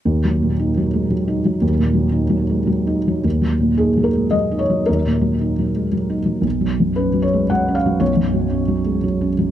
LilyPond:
<<
  \new Staff \with { instrumentName = "Felt piano" } { \time 3/4 \key dis \minor \tempo 4 = 115 r2. | r2. | r4 gis'8 ais'8 dis''8 cis''8 | ais'2~ ais'8 r8 |
r4 b'8 cis''8 fis''8 eis''8 | cis''2~ cis''8 r8 | }
  \new Staff \with { instrumentName = "Felt piano" } { \clef bass \time 3/4 \key dis \minor \tuplet 3/2 { dis,8 fis8 ais,8 dis'8 fis8 gis8 fis8 dis'8 fis8 } | \tuplet 3/2 { dis,8 ais,8 fis8 dis'8 fis8 gis8 fis8 dis'8 fis8 } | \tuplet 3/2 { dis,8 fis8 ais,8 dis'8 fis8 gis8 fis8 dis'8 fis8 } | \tuplet 3/2 { dis,8 ais,8 fis8 dis'8 fis8 gis8 fis8 dis'8 fis8 } |
\tuplet 3/2 { b,,8 fis8 fis,8 cis'8 fis8 gis8 fis8 cis'8 fis8 } | \tuplet 3/2 { b,,8 fis,8 fis8 cis'8 fis8 gis8 fis8 cis'8 fis8 } | }
>>